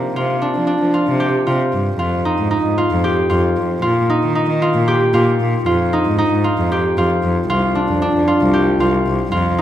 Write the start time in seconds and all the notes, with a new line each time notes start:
Already playing: C3 A#3 C4 D4 F4
0.16 C3 F4
0.42 D4
0.55 F3
0.67 D4
0.81 F3
0.94 F4
1.07 C3
1.20 G4
1.47 C3 F4
1.73 G2
1.99 F2 F4
2.25 D#4
2.38 G#2
2.51 D#4
2.65 G#2
2.78 F4
2.91 F2
3.04 G4
3.30 F2 F4
3.57 F2
3.82 A#2 F4
4.10 D#4
4.23 D#3
4.35 D#4
4.49 D#3
4.62 F4
4.74 A#2
4.88 G4
5.14 A#2 F4
5.40 A#2
5.66 F2 F4
5.93 D#4
6.05 G#2
6.18 D#4
6.32 G#2
6.44 F4
6.58 F2
6.72 G4
6.97 F2 F4
7.23 F2
7.49 C2 F4
7.75 D4
7.88 F2
8.02 D4
8.15 F2
8.28 F4
8.41 C2
8.54 G4
8.80 C2 F4
9.06 C2
9.32 F2 F4
9.58 D#4